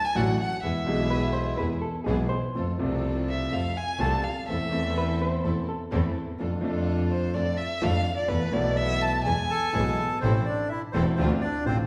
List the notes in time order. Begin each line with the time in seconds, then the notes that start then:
0.05 G#5
0.15 A1 A2 D3 F#3 A3 D4 F#4 F#5
0.40 F#5
0.63 E2 E3 G#3 B3 E4 G#4 E5
0.85 B1 B2 E3 G#3 B3 E4 G#4
0.89 G#4
1.10 B4
1.33 C5
1.57 E2 E3 G#3 B3 E4 G#4 B4
1.82 A4
2.04 B1 B2 E3 G#3 B3 E4 G#4
2.08 G#4
2.29 C5
2.55 F2 F3 A3 C4 F4 A4
2.78 C2 C3 F3 A3 C4 F4 A4
3.29 E5
3.51 F2 F3 A3 C4 F4 A4 F5
3.77 G#5
3.99 C2 C3 F3 A3 C4 F4 A4 A5
4.24 F5
4.48 E2 E3 A3 C4 E4 A4 E5
4.69 E2 E3 A3 C4 E4 A4
4.98 B4
5.22 C5
5.44 E2 E3 A3 C4 E4 A4
5.69 A4
5.92 E2 E3 A3 C4 E4 A4
6.39 F2 F3 A3 D4 F4 A4
6.61 F2 F3 A3 D4 F4 A4
7.11 C5
7.34 F2 F3 A3 D4 F4 A4 D5
7.57 E5
7.81 F2 F3 A3 D4 F4 A4 F5
8.17 D5
8.27 E2 E3 A3 B3 E4 A4 B4
8.51 B1 B2 E3 A3 B3 E4 A4 D5
8.77 E5
9.01 A5
9.25 E2 E3 G#3 B3 E4 G#4 G#5
9.50 A4 A5
9.73 B1 B2 E3 G#3 B3 E4 G#4
10.21 A1 A2 E3 A3 C4 E4 A4 C5
10.45 D4 D5
10.69 E4 E5
10.92 E1 E2 E3 A3 C4 E4 A4 C5
11.16 D2 D3 A3 C4 D4 F4 C5
11.20 C4 F4
11.41 D4 D5
11.65 A1 A2 D3 A3 C4 D4 F4 C5